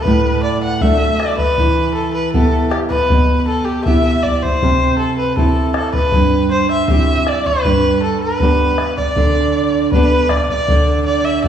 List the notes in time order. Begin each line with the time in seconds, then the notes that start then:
0.02 B4, bombo low
0.07 A2
0.43 D5
0.64 F#5
0.75 F#5
0.81 A3 D4 F#4 E5, bombo low
1.19 D5, bombo rim
1.38 B4, bombo low
1.58 E3, bombo low
1.95 A4
2.14 B4
2.33 B3 E4 G4 A4, bombo low
2.71 G4, bombo rim
2.89 B4, bombo low
3.10 B2, bombo low
3.48 A4
3.65 G4
3.85 B3 E4 G4 E5, bombo low
4.23 D5, bombo low
4.36 D5
4.43 C5, bombo low
4.62 C3, bombo low
4.99 A4
5.18 B4
5.37 C4 E4 G4 A4, bombo low
5.74 A4, bombo rim
5.93 B4, bombo low
6.12 G2, bombo low
6.51 C5
6.71 E5
6.88 C4 E4 G4 E5, bombo low
7.27 D5, bombo rim
7.46 B4, bombo low
7.65 G2, bombo low
8.03 A4
8.21 B4
8.40 B3 D4 G4, bombo low
8.78 bombo rim
8.97 D5, bombo low
9.16 D3, bombo low
9.92 B3 D4 G4 B4, bombo low
10.29 D5, bombo rim, bombo low
10.50 D5, bombo low
10.68 D3, bombo low
11.06 D5
11.25 E5
11.44 A3 D4 F#4 D5, bombo low